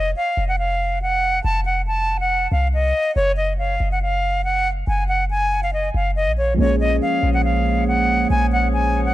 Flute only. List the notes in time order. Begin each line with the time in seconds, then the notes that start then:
Already playing: D#5
0.17 F5
0.48 F#5
0.59 F5
1.02 F#5
1.44 A5
1.65 F#5
1.87 A5
2.20 F#5
2.52 F5
2.74 D#5
3.16 C#5
3.37 D#5
3.58 F5
3.92 F#5
4.02 F5
4.44 F#5
4.88 G#5
5.08 F#5
5.31 G#5
5.63 F5
5.73 D#5
5.95 F5
6.16 D#5
6.38 C#5
6.59 C#5
6.80 D#5
7.02 F5
7.34 F#5
7.44 F5
7.88 F#5
8.30 G#5
8.52 F#5
8.73 G#5
9.05 F#5